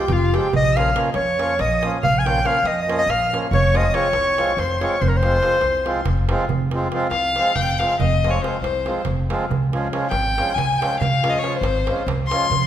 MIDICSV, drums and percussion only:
0, 0, Header, 1, 2, 480
1, 0, Start_track
1, 0, Key_signature, -4, "minor"
1, 0, Tempo, 427655
1, 602, Time_signature, 7, 3, 24, 8
1, 14219, End_track
2, 0, Start_track
2, 0, Title_t, "Darbuka"
2, 94, Note_on_c, 9, 63, 74
2, 94, Note_on_c, 9, 64, 76
2, 206, Note_off_c, 9, 63, 0
2, 206, Note_off_c, 9, 64, 0
2, 245, Note_on_c, 9, 63, 33
2, 357, Note_off_c, 9, 63, 0
2, 379, Note_on_c, 9, 63, 74
2, 491, Note_off_c, 9, 63, 0
2, 501, Note_on_c, 9, 63, 26
2, 598, Note_on_c, 9, 64, 99
2, 613, Note_off_c, 9, 63, 0
2, 710, Note_off_c, 9, 64, 0
2, 740, Note_on_c, 9, 63, 30
2, 852, Note_off_c, 9, 63, 0
2, 863, Note_on_c, 9, 63, 76
2, 975, Note_off_c, 9, 63, 0
2, 1076, Note_on_c, 9, 63, 83
2, 1189, Note_off_c, 9, 63, 0
2, 1280, Note_on_c, 9, 63, 65
2, 1392, Note_off_c, 9, 63, 0
2, 1422, Note_on_c, 9, 63, 28
2, 1534, Note_off_c, 9, 63, 0
2, 1565, Note_on_c, 9, 63, 73
2, 1677, Note_off_c, 9, 63, 0
2, 1787, Note_on_c, 9, 63, 72
2, 1899, Note_off_c, 9, 63, 0
2, 1932, Note_on_c, 9, 63, 25
2, 2044, Note_off_c, 9, 63, 0
2, 2050, Note_on_c, 9, 63, 67
2, 2162, Note_off_c, 9, 63, 0
2, 2178, Note_on_c, 9, 63, 27
2, 2282, Note_on_c, 9, 64, 86
2, 2290, Note_off_c, 9, 63, 0
2, 2395, Note_off_c, 9, 64, 0
2, 2425, Note_on_c, 9, 63, 24
2, 2537, Note_off_c, 9, 63, 0
2, 2541, Note_on_c, 9, 63, 77
2, 2653, Note_off_c, 9, 63, 0
2, 2756, Note_on_c, 9, 63, 66
2, 2868, Note_off_c, 9, 63, 0
2, 2980, Note_on_c, 9, 63, 67
2, 3092, Note_off_c, 9, 63, 0
2, 3118, Note_on_c, 9, 63, 29
2, 3231, Note_off_c, 9, 63, 0
2, 3249, Note_on_c, 9, 63, 64
2, 3361, Note_off_c, 9, 63, 0
2, 3477, Note_on_c, 9, 63, 69
2, 3590, Note_off_c, 9, 63, 0
2, 3620, Note_on_c, 9, 63, 26
2, 3732, Note_off_c, 9, 63, 0
2, 3746, Note_on_c, 9, 63, 74
2, 3858, Note_off_c, 9, 63, 0
2, 3862, Note_on_c, 9, 63, 26
2, 3967, Note_on_c, 9, 64, 87
2, 3975, Note_off_c, 9, 63, 0
2, 4079, Note_off_c, 9, 64, 0
2, 4099, Note_on_c, 9, 63, 25
2, 4208, Note_off_c, 9, 63, 0
2, 4208, Note_on_c, 9, 63, 65
2, 4320, Note_off_c, 9, 63, 0
2, 4423, Note_on_c, 9, 63, 70
2, 4536, Note_off_c, 9, 63, 0
2, 4639, Note_on_c, 9, 63, 71
2, 4751, Note_off_c, 9, 63, 0
2, 4778, Note_on_c, 9, 63, 28
2, 4890, Note_off_c, 9, 63, 0
2, 4919, Note_on_c, 9, 63, 68
2, 5032, Note_off_c, 9, 63, 0
2, 5146, Note_on_c, 9, 63, 65
2, 5258, Note_off_c, 9, 63, 0
2, 5286, Note_on_c, 9, 63, 29
2, 5398, Note_off_c, 9, 63, 0
2, 5403, Note_on_c, 9, 63, 67
2, 5514, Note_off_c, 9, 63, 0
2, 5514, Note_on_c, 9, 63, 23
2, 5627, Note_off_c, 9, 63, 0
2, 5636, Note_on_c, 9, 64, 73
2, 5749, Note_off_c, 9, 64, 0
2, 5867, Note_on_c, 9, 63, 67
2, 5979, Note_off_c, 9, 63, 0
2, 5979, Note_on_c, 9, 63, 25
2, 6091, Note_off_c, 9, 63, 0
2, 6091, Note_on_c, 9, 63, 58
2, 6201, Note_off_c, 9, 63, 0
2, 6201, Note_on_c, 9, 63, 23
2, 6298, Note_off_c, 9, 63, 0
2, 6298, Note_on_c, 9, 63, 59
2, 6411, Note_off_c, 9, 63, 0
2, 6443, Note_on_c, 9, 63, 31
2, 6555, Note_off_c, 9, 63, 0
2, 6576, Note_on_c, 9, 63, 60
2, 6684, Note_off_c, 9, 63, 0
2, 6684, Note_on_c, 9, 63, 24
2, 6796, Note_off_c, 9, 63, 0
2, 6797, Note_on_c, 9, 63, 73
2, 6797, Note_on_c, 9, 64, 63
2, 6909, Note_off_c, 9, 63, 0
2, 6909, Note_off_c, 9, 64, 0
2, 6930, Note_on_c, 9, 63, 28
2, 7042, Note_off_c, 9, 63, 0
2, 7056, Note_on_c, 9, 63, 79
2, 7168, Note_off_c, 9, 63, 0
2, 7286, Note_on_c, 9, 64, 82
2, 7398, Note_off_c, 9, 64, 0
2, 7536, Note_on_c, 9, 63, 62
2, 7648, Note_off_c, 9, 63, 0
2, 7765, Note_on_c, 9, 63, 62
2, 7877, Note_off_c, 9, 63, 0
2, 7982, Note_on_c, 9, 63, 66
2, 8095, Note_off_c, 9, 63, 0
2, 8130, Note_on_c, 9, 63, 25
2, 8243, Note_off_c, 9, 63, 0
2, 8259, Note_on_c, 9, 63, 59
2, 8371, Note_off_c, 9, 63, 0
2, 8481, Note_on_c, 9, 63, 67
2, 8481, Note_on_c, 9, 64, 63
2, 8593, Note_off_c, 9, 63, 0
2, 8593, Note_off_c, 9, 64, 0
2, 8755, Note_on_c, 9, 63, 68
2, 8867, Note_off_c, 9, 63, 0
2, 8871, Note_on_c, 9, 63, 23
2, 8980, Note_on_c, 9, 64, 91
2, 8983, Note_off_c, 9, 63, 0
2, 9093, Note_off_c, 9, 64, 0
2, 9126, Note_on_c, 9, 63, 23
2, 9238, Note_off_c, 9, 63, 0
2, 9254, Note_on_c, 9, 63, 64
2, 9366, Note_off_c, 9, 63, 0
2, 9477, Note_on_c, 9, 63, 62
2, 9589, Note_off_c, 9, 63, 0
2, 9699, Note_on_c, 9, 63, 61
2, 9811, Note_off_c, 9, 63, 0
2, 9814, Note_on_c, 9, 63, 29
2, 9926, Note_off_c, 9, 63, 0
2, 9944, Note_on_c, 9, 63, 62
2, 10056, Note_off_c, 9, 63, 0
2, 10156, Note_on_c, 9, 63, 69
2, 10156, Note_on_c, 9, 64, 60
2, 10268, Note_off_c, 9, 63, 0
2, 10268, Note_off_c, 9, 64, 0
2, 10440, Note_on_c, 9, 63, 71
2, 10552, Note_off_c, 9, 63, 0
2, 10561, Note_on_c, 9, 63, 21
2, 10674, Note_off_c, 9, 63, 0
2, 10676, Note_on_c, 9, 64, 76
2, 10788, Note_off_c, 9, 64, 0
2, 10810, Note_on_c, 9, 63, 21
2, 10922, Note_off_c, 9, 63, 0
2, 10923, Note_on_c, 9, 63, 60
2, 11035, Note_off_c, 9, 63, 0
2, 11147, Note_on_c, 9, 63, 69
2, 11259, Note_off_c, 9, 63, 0
2, 11352, Note_on_c, 9, 63, 67
2, 11464, Note_off_c, 9, 63, 0
2, 11500, Note_on_c, 9, 63, 28
2, 11612, Note_off_c, 9, 63, 0
2, 11651, Note_on_c, 9, 63, 68
2, 11763, Note_off_c, 9, 63, 0
2, 11876, Note_on_c, 9, 63, 69
2, 11876, Note_on_c, 9, 64, 67
2, 11988, Note_off_c, 9, 63, 0
2, 11988, Note_off_c, 9, 64, 0
2, 12146, Note_on_c, 9, 63, 77
2, 12258, Note_off_c, 9, 63, 0
2, 12264, Note_on_c, 9, 63, 28
2, 12361, Note_on_c, 9, 64, 88
2, 12376, Note_off_c, 9, 63, 0
2, 12474, Note_off_c, 9, 64, 0
2, 12508, Note_on_c, 9, 63, 26
2, 12613, Note_off_c, 9, 63, 0
2, 12613, Note_on_c, 9, 63, 83
2, 12721, Note_off_c, 9, 63, 0
2, 12721, Note_on_c, 9, 63, 34
2, 12833, Note_off_c, 9, 63, 0
2, 12839, Note_on_c, 9, 63, 69
2, 12951, Note_off_c, 9, 63, 0
2, 12955, Note_on_c, 9, 63, 29
2, 13059, Note_off_c, 9, 63, 0
2, 13059, Note_on_c, 9, 63, 80
2, 13171, Note_off_c, 9, 63, 0
2, 13324, Note_on_c, 9, 63, 75
2, 13436, Note_off_c, 9, 63, 0
2, 13448, Note_on_c, 9, 63, 29
2, 13560, Note_off_c, 9, 63, 0
2, 13560, Note_on_c, 9, 63, 89
2, 13560, Note_on_c, 9, 64, 69
2, 13672, Note_off_c, 9, 63, 0
2, 13672, Note_off_c, 9, 64, 0
2, 13821, Note_on_c, 9, 63, 90
2, 13933, Note_off_c, 9, 63, 0
2, 13943, Note_on_c, 9, 63, 27
2, 14050, Note_on_c, 9, 64, 96
2, 14055, Note_off_c, 9, 63, 0
2, 14162, Note_off_c, 9, 64, 0
2, 14172, Note_on_c, 9, 63, 31
2, 14219, Note_off_c, 9, 63, 0
2, 14219, End_track
0, 0, End_of_file